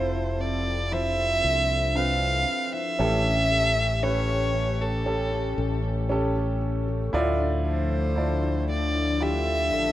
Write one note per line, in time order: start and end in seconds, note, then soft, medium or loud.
0.00 1.41 F1 medium
0.00 0.37 C3 medium
0.00 0.91 F3 medium
0.00 2.95 F3 medium
0.00 0.39 C4 soft
0.00 2.95 C4 medium
0.00 0.92 E4 medium
0.00 0.92 F4 medium
0.00 1.44 A4 medium
0.00 2.95 A4 medium
0.00 3.00 A4 medium
0.00 0.42 C5 medium
0.00 0.88 C5 medium
0.00 0.90 E5 medium
0.15 0.66 E4 soft
0.40 1.17 C4 medium
0.40 0.93 D5 medium
0.66 2.73 E4 soft
0.91 3.10 F3 medium
0.91 2.97 D4 medium
0.91 1.91 E4 medium
0.91 1.91 F4 soft
0.91 1.91 C5 medium
0.91 1.98 E5 loud
1.18 1.68 C4 soft
1.44 2.44 C2 medium
1.44 1.96 A4 medium
1.69 2.46 C4 soft
1.95 2.94 C4 medium
1.95 2.95 F4 medium
1.95 3.50 A4 medium
1.95 2.95 B4 medium
1.95 2.74 F5 medium
2.47 3.10 C4 soft
2.73 4.28 E4 soft
2.73 4.04 E5 medium
2.98 5.54 A1 medium
2.98 5.04 A2 medium
2.98 4.51 A2 medium
2.98 4.51 E3 medium
2.98 9.92 A3 medium
2.98 7.09 C#4 medium
2.98 3.98 C#4 medium
2.98 7.09 G4 medium
2.98 3.98 G4 medium
2.98 3.98 A4 medium
3.25 3.76 C#4 soft
3.51 4.02 A4 medium
3.77 4.54 C#4 soft
4.02 5.01 C#4 medium
4.02 5.02 G4 medium
4.02 5.57 A4 medium
4.02 5.02 B4 medium
4.02 4.82 C#5 medium
4.28 4.79 G4 soft
4.55 5.31 C#4 medium
4.80 6.34 G4 soft
4.80 5.84 A4 medium
5.06 7.13 A2 medium
5.06 6.05 C#4 medium
5.06 6.05 G4 medium
5.06 6.05 A4 medium
5.32 5.82 C#4 soft
5.57 7.09 A1 medium
5.57 6.09 A4 medium
5.83 6.60 C#4 soft
6.09 7.08 C#4 medium
6.09 7.09 G4 medium
6.09 7.65 A4 medium
6.09 7.09 A4 medium
6.35 6.87 G4 medium
6.61 7.24 C#4 soft
6.88 7.24 G4 medium
7.12 9.71 D2 medium
7.12 8.65 A2 medium
7.12 9.92 D3 medium
7.12 9.20 D3 medium
7.12 9.92 F3 medium
7.12 9.92 D4 medium
7.12 8.12 E4 medium
7.12 8.12 F4 medium
7.12 8.12 D5 loud
7.40 7.90 D4 soft
7.65 8.16 A4 medium
7.65 8.66 C5 medium
7.91 8.67 D4 soft
8.16 9.15 E4 medium
8.16 9.15 F4 medium
8.16 9.72 A4 medium
8.16 9.16 D5 medium
8.43 8.95 E4 medium
8.69 9.46 D4 medium
8.69 9.24 D5 medium
8.95 9.92 E4 medium
9.20 9.92 D3 medium
9.20 9.92 E4 medium
9.20 9.92 F4 medium
9.20 9.92 G4 medium
9.20 9.92 E5 medium
9.47 9.92 D4 medium
9.71 9.92 A1 medium
9.71 9.92 A4 medium